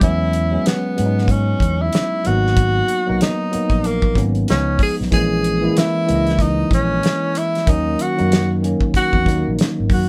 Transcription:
0.00 0.56 E2 loud
0.00 0.39 F#3 medium
0.00 0.39 G#3 medium
0.00 0.40 B3 medium
0.00 0.40 C#4 loud
0.00 0.69 E4 loud
0.00 kick loud
0.00 closed hi-hat medium
0.33 closed hi-hat medium
0.51 0.88 F#3 medium
0.51 0.88 G#3 medium
0.51 0.89 B3 medium
0.51 0.89 C#4 medium
0.66 1.33 B3 medium
0.66 snare loud
0.66 closed hi-hat loud
0.96 1.53 G#2 loud
0.96 1.97 F#3 medium
0.96 1.97 G#3 medium
0.96 1.98 B3 medium
0.96 1.06 C#4 medium
0.96 closed hi-hat medium
1.06 2.01 D#4 medium
1.18 snare soft
1.28 1.83 C#4 loud
1.28 kick medium
1.28 closed hi-hat medium
1.60 1.88 E2 loud
1.60 kick medium
1.60 closed hi-hat medium
1.82 2.28 E4 loud
1.93 snare loud
1.93 closed hi-hat medium
2.24 2.80 G#1 loud
2.24 2.88 F#3 medium
2.24 2.89 A#3 medium
2.24 2.89 B3 medium
2.24 2.90 D#4 medium
2.24 3.22 F#4 loud
2.24 closed hi-hat medium
2.47 snare soft
2.57 kick loud
2.57 closed hi-hat medium
2.88 closed hi-hat medium
3.06 3.20 B1 medium
3.06 3.43 F#3 medium
3.06 3.44 A#3 medium
3.06 3.44 B3 medium
3.06 3.45 D#4 medium
3.21 3.88 D#4 loud
3.21 snare loud
3.21 closed hi-hat loud
3.51 4.04 F#3 medium
3.51 4.04 A#3 medium
3.51 4.05 B3 medium
3.51 4.05 D#4 medium
3.51 muted fingered electric bass stroke soft
3.51 closed hi-hat medium
3.70 4.18 A#1 medium
3.70 kick medium
3.70 closed hi-hat soft
3.84 4.23 A#3 loud
3.84 closed hi-hat medium
4.02 kick medium
4.15 4.44 G#1 medium
4.15 4.48 F#3 medium
4.15 4.48 A#3 medium
4.15 4.48 B3 medium
4.15 4.49 C#4 medium
4.15 kick loud
4.15 closed hi-hat medium
4.35 closed hi-hat soft
4.47 4.77 C#2 loud
4.47 5.01 F3 medium
4.47 5.02 G#3 medium
4.47 5.02 B3 medium
4.47 4.79 C#4 loud
4.47 5.02 D#4 medium
4.47 snare loud
4.47 closed hi-hat medium
4.79 4.96 G#4 loud
4.79 kick loud
4.79 open hi-hat medium
5.01 5.11 B1 medium
5.01 snare soft
5.11 5.67 A#1 loud
5.11 5.49 E3 loud
5.11 5.50 G#3 medium
5.11 5.50 A#3 medium
5.11 5.51 C#4 loud
5.11 5.79 G#4 loud
5.11 kick loud
5.11 closed hi-hat medium
5.44 closed hi-hat medium
5.61 5.98 E3 medium
5.61 5.99 G#3 medium
5.61 5.99 A#3 medium
5.61 6.00 E4 medium
5.77 6.43 E4 loud
5.77 snare loud
5.77 closed hi-hat loud
6.07 6.63 C#2 medium
6.07 7.07 E3 medium
6.07 7.07 G#3 medium
6.07 7.08 A#3 medium
6.07 6.16 D4 medium
6.07 closed hi-hat medium
6.15 7.11 D#5 medium
6.27 snare soft
6.27 closed hi-hat soft
6.39 6.73 D#4 loud
6.39 kick medium
6.39 closed hi-hat medium
6.71 6.99 A#1 loud
6.71 7.40 C#4 loud
6.71 kick loud
6.71 closed hi-hat medium
7.03 snare loud
7.03 closed hi-hat medium
7.35 7.71 E4 loud
7.35 closed hi-hat medium
7.55 snare soft
7.55 closed hi-hat soft
7.66 7.95 D#2 loud
7.66 8.05 D#3 medium
7.66 8.05 F#3 medium
7.66 8.06 A#3 medium
7.66 8.06 C#4 loud
7.66 8.03 D#4 loud
7.66 kick loud
7.66 closed hi-hat medium
7.99 8.64 F#4 loud
7.99 closed hi-hat medium
8.16 8.73 F#2 medium
8.16 8.54 D#3 medium
8.16 8.54 F#3 medium
8.16 8.55 A#3 medium
8.16 8.55 D#4 medium
8.16 closed hi-hat soft
8.32 snare loud
8.32 closed hi-hat loud
8.62 9.14 D#3 medium
8.62 9.15 F#3 medium
8.62 9.15 A#3 medium
8.62 9.16 C#4 medium
8.62 closed hi-hat medium
8.81 kick medium
8.94 9.56 F#4 loud
8.94 kick medium
8.94 closed hi-hat medium
9.13 9.27 E2 medium
9.13 kick loud
9.26 9.43 D#2 loud
9.26 10.03 D#3 medium
9.26 10.03 F#3 medium
9.26 10.04 A#3 medium
9.26 10.04 D#4 medium
9.26 kick medium
9.26 closed hi-hat medium
9.48 9.58 A#1 medium
9.59 snare loud
9.59 closed hi-hat medium
9.80 9.90 G#1 medium
9.90 10.07 F#2 medium
9.90 10.09 F#4 medium
9.90 kick loud
9.90 open hi-hat medium

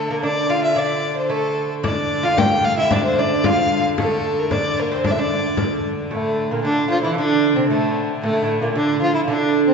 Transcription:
0.00 1.84 D3 medium
0.00 0.12 A4 loud
0.10 0.24 A#3 medium
0.10 0.23 A#4 medium
0.23 0.49 D4 medium
0.23 0.52 D5 medium
0.49 0.75 F4 medium
0.49 0.63 F5 loud
0.64 0.79 E5 medium
0.76 1.32 D4 loud
0.76 1.16 D5 medium
1.17 1.32 C5 medium
1.30 1.67 A3 medium
1.30 1.71 A4 medium
1.83 6.10 D3 medium
1.83 2.23 D4 medium
1.83 2.26 D5 medium
1.83 frame drum medium
2.23 2.37 F4 medium
2.23 2.39 F5 loud
2.37 2.65 G4 medium
2.37 2.66 G5 loud
2.37 frame drum loud
2.64 2.77 F4 medium
2.64 2.77 F5 loud
2.64 frame drum soft
2.78 2.91 E4 medium
2.78 2.94 E5 loud
2.91 3.18 D4 loud
2.91 3.04 D5 loud
2.91 frame drum loud
3.05 3.20 C5 loud
3.19 3.44 D4 medium
3.19 3.47 D5 medium
3.44 3.82 F4 loud
3.44 3.85 F5 loud
3.44 frame drum medium
3.71 frame drum soft
3.98 4.53 A3 medium
3.98 4.41 A4 loud
3.98 frame drum medium
4.39 4.53 A#4 medium
4.51 4.78 D4 medium
4.51 4.81 D5 loud
4.51 frame drum medium
4.79 4.91 A#3 medium
4.79 4.93 A#4 medium
4.92 5.05 C4 medium
4.92 5.05 C5 medium
5.04 5.17 D4 medium
5.04 5.12 D5 medium
5.04 frame drum medium
5.11 5.20 E5 medium
5.18 5.80 D4 medium
5.18 5.85 D5 medium
5.57 frame drum medium
5.84 frame drum soft
6.10 6.51 A2 medium
6.10 9.74 D3 medium
6.10 6.52 A3 medium
6.51 6.64 A#2 medium
6.51 6.63 A#3 medium
6.64 6.91 D3 medium
6.64 6.88 D4 medium
6.90 7.00 F3 medium
6.90 7.02 F4 medium
7.01 7.18 E3 medium
7.01 7.04 F3 medium
7.01 7.15 E4 medium
7.16 7.56 D3 medium
7.16 7.57 D4 loud
7.55 7.70 C3 medium
7.55 7.68 C4 medium
7.68 8.07 A2 medium
7.68 8.06 A3 medium
8.21 8.32 A2 medium
8.21 8.59 A3 loud
8.33 8.41 A2 medium
8.43 8.62 A2 medium
8.61 8.76 A#2 medium
8.61 8.67 A#3 medium
8.75 9.03 D3 medium
8.75 9.00 D4 medium
9.01 9.29 F3 medium
9.01 9.14 F4 loud
9.14 9.21 E4 medium
9.28 9.74 D3 loud
9.28 9.65 D4 loud
9.67 9.74 C4 medium

